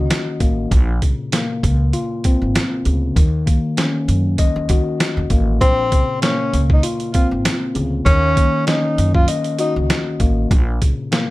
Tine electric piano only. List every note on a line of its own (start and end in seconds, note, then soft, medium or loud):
0.00 0.73 D#3 loud
0.00 0.41 A#3 medium
0.00 0.41 C#4 medium
0.00 0.71 F#4 medium
0.00 0.71 D#5 medium
0.41 0.71 A#3 medium
0.71 2.24 A#2 medium
1.03 2.55 C#3 medium
1.32 2.86 A#3 medium
1.93 3.16 F4 medium
2.25 3.16 C4 medium
2.85 3.16 C#3 medium
3.16 4.69 D#3 loud
3.46 5.00 A#3 medium
3.77 5.30 C#4 medium
4.39 5.61 D#5 medium
4.70 5.61 F#4 medium
5.30 5.61 A#3 medium
5.61 7.14 A#2 medium
5.92 7.45 C#3 medium
6.22 7.75 A#3 medium
6.83 8.06 F4 loud
7.15 8.06 C4 medium
7.75 8.06 C#3 medium
8.06 9.59 D#3 loud
8.36 9.89 A#3 medium
8.67 10.20 C#4 medium
9.28 10.51 D#5 medium
9.59 10.51 F#4 medium
10.20 10.51 A#3 medium
10.50 11.30 A#2 medium
10.82 11.30 C#3 medium
11.12 11.30 A#3 medium